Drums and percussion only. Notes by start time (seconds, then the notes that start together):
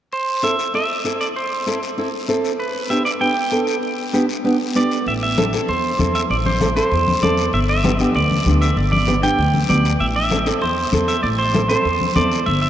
0.13 long guiro
0.43 short guiro
0.59 short guiro
0.74 long guiro
1.05 short guiro
1.21 short guiro
1.37 long guiro
1.67 short guiro
1.83 short guiro
1.98 long guiro
2.29 short guiro
2.44 short guiro
2.60 long guiro
2.91 short guiro
3.06 short guiro
3.22 long guiro
3.52 short guiro
3.67 short guiro
3.83 long guiro
4.14 short guiro
4.29 short guiro
4.45 long guiro
4.76 short guiro
4.91 short guiro
5.07 high conga, long guiro
5.37 high conga, short guiro
5.53 short guiro
5.68 high conga, long guiro
5.99 high conga, short guiro
6.15 short guiro
6.30 high conga, long guiro
6.46 high conga
6.61 high conga, short guiro
6.77 short guiro
6.92 high conga, long guiro
7.08 high conga
7.22 high conga, short guiro
7.37 short guiro
7.53 high conga, long guiro
7.84 high conga, short guiro
7.99 short guiro
8.15 high conga, long guiro
8.31 high conga
8.46 high conga, short guiro
8.62 short guiro
8.77 high conga, long guiro
8.93 high conga
9.08 high conga, short guiro
9.23 short guiro
9.39 high conga, long guiro
9.54 high conga
9.70 high conga, short guiro
9.85 short guiro
10.00 high conga, long guiro
10.31 high conga, short guiro
10.46 short guiro
10.62 high conga, long guiro
10.93 high conga, short guiro
11.08 short guiro
11.24 high conga, long guiro
11.54 high conga, short guiro
11.70 short guiro
11.85 high conga, long guiro
12.01 high conga
12.16 high conga, short guiro
12.32 short guiro
12.46 high conga, long guiro